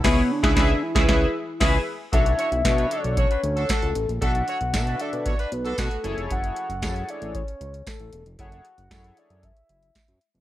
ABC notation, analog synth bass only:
X:1
M:4/4
L:1/16
Q:1/4=115
K:Bdor
V:1 name="Analog synth bass" clef=bass
C,,2 z C,, C,,2 z C,, C,,2 z2 C,,2 z2 | B,,,2 z B,,, B,,2 z B,,,2 z D,,2 z C,, A,,, ^A,,, | B,,,2 z B,,, B,,2 z B,,2 z B,,,2 B,, z F,,, ^E,,, | F,,,2 z F,,, F,,2 z A,,,2 z C,,2 z A,,, E,,, ^E,,, |
F,,,2 z F,,, F,,2 z F,,2 z F,,,2 z F,, z ^E,,, |]